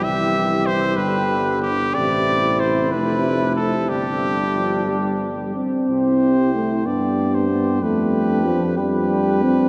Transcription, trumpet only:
\new Staff \with { instrumentName = "Trumpet" } { \time 6/8 \key g \mixolydian \tempo 4. = 62 e''4 c''8 b'4 g'8 | d''4 c''8 b'4 a'8 | g'2~ g'8 r8 | c''4. d''8. c''8. |
b'4. b'4. | }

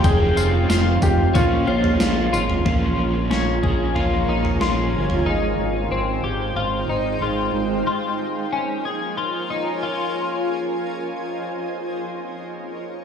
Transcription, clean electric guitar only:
\new Staff \with { instrumentName = "Clean electric guitar" } { \time 4/4 \key bes \dorian \tempo 4 = 92 g''8 f'8 f'4 des'8 f'4 f'8 | f'4 des'8 aes'8 f'8 ees'8 f'4 | ees'4 c'8 g'8 f'8 ees'8 f'4 | f'4 des'8 aes'8 f'8 ees'8 f'4 |
r1 | }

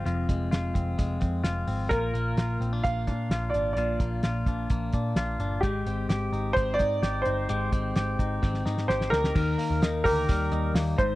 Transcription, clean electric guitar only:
\new Staff \with { instrumentName = "Clean electric guitar" } { \time 4/4 \key bes \mixolydian \tempo 4 = 129 <f, aes c' f'>8 aes8 f'8 c'8 aes8 c'8 f'8 c'8 | <bes, f'>8 bes8 f'8 c'16 d'16 bes8 d'8 f'8 d'8 | <bes, f'>8 bes8 f'8 d'8 bes8 d'8 f'8 d'8 | <aes g'>8 c'8 g'8 ees'4 ees'8 g'8 ees'8 |
<aes g'>8 c'8 g'8 ees'8 c'8 ees'8 g'8 ees'8 | ees8 bes8 ees'8 g'8 g8 ees'8 bes8 aes,8 | }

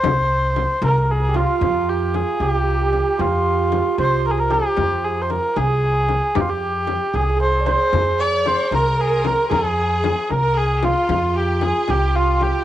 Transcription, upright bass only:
\new Staff \with { instrumentName = "Upright bass" } { \clef bass \time 6/8 \tempo 4. = 76 c,4. c,4. | f,4. c,4. | f,4. c,4. | f,4. c,4. |
f,4. c,4. | f,4. c,4. | f,4. c,4. | f,4. c,4. | }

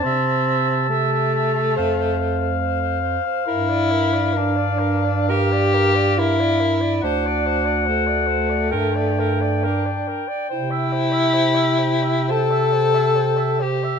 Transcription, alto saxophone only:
\new Staff \with { instrumentName = "Alto saxophone" } { \time 4/4 \key g \dorian \tempo 4 = 69 e''16 e''16 e''16 e''16 e''16 e''16 e''16 e''16 c''16 c''16 c''16 c''16 c''16 c''16 c''16 c''16 | bes'16 d''16 bes'16 d''16 bes'16 d''16 bes'16 d''16 bes'16 d''16 bes'16 d''16 bes'16 d''16 bes'16 d''16 | c''16 d''16 c''16 d''16 c''16 d''16 c''16 d''16 bes'16 d''16 bes'16 d''16 bes'16 d''16 bes'16 d''16 | c''16 e''16 c''16 e''16 c''16 e''16 c''16 e''16 c''16 e''16 c''16 e''16 c''16 e''16 c''16 e''16 | }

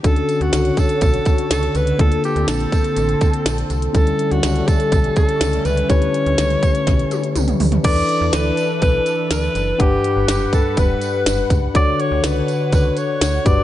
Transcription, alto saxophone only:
\new Staff \with { instrumentName = "Alto saxophone" } { \time 4/4 \key d \major \tempo 4 = 123 a'8. fis'8. a'8 a'4 a'8 b'8 | a'8 g'8 a'2~ a'8 r8 | a'8. fis'8. a'4 a'4 b'8 | cis''2. r4 |
d''4 b'4 b'4 b'4 | g'4 g'8 a'8 b'4. r8 | d''8 cis''8 b'4 b'8 cis''4 d''8 | }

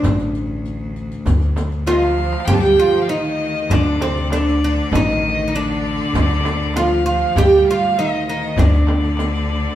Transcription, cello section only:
\new Staff \with { instrumentName = "Cello section" } { \clef bass \time 4/4 \tempo 4 = 98 r2. f4 | g8 f8 ees4 d8 c8 d8 d8 | ees4 d2 f8 f8 | g4 ees8 ees8 d2 | }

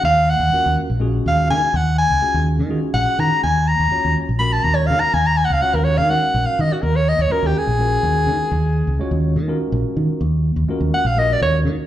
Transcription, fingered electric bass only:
\new Staff \with { instrumentName = "Fingered electric bass" } { \clef bass \time 7/8 \key ees \minor \tempo 4 = 124 ees,8. ees,16 r16 ees,16 r16 bes,,8. ees,8 ees16 r16 | ees,8. des,16 r16 ees,8 ees8 r16 bes,,16 r16 ees16 r16 | ees,8. ees,16 r16 ees,16 r16 bes,,8. ees,8 ees16 r16 | ees,8. des,16 r16 ees,8 ees8 r16 bes,,16 r16 ees16 r16 |
ees,8. ees,16 r16 ees,16 r16 bes,,8. ees,8 ees16 r16 | ees,8. des,16 r16 ees,8 ees8 r16 bes,,16 r16 ees16 r16 | ees,8. ees,16 r16 ees,16 r16 bes,,8. ees,8 ees16 r16 | }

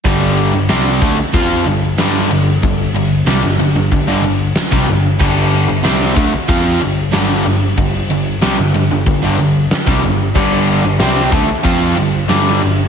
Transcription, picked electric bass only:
\new Staff \with { instrumentName = "Picked electric bass" } { \clef bass \time 4/4 \key c \dorian \tempo 4 = 93 g,,8. g,,16 c,8 d,16 r16 f,8 g,,8 g,,8 g,,8 | g,,8 g,,8 c,16 g,,16 g,,16 g,,16 g,,16 g,,16 g,,8 r16 c,16 g,,8 | g,,8. g,,16 c,8 d,16 r16 f,8 g,,8 g,,8 g,,8 | g,,8 g,,8 c,16 g,,16 g,,16 g,,16 g,,16 g,,16 g,,8 r16 c,16 g,,8 |
g,,8. g,,16 c,8 d,16 r16 f,8 g,,8 g,,8 g,,8 | }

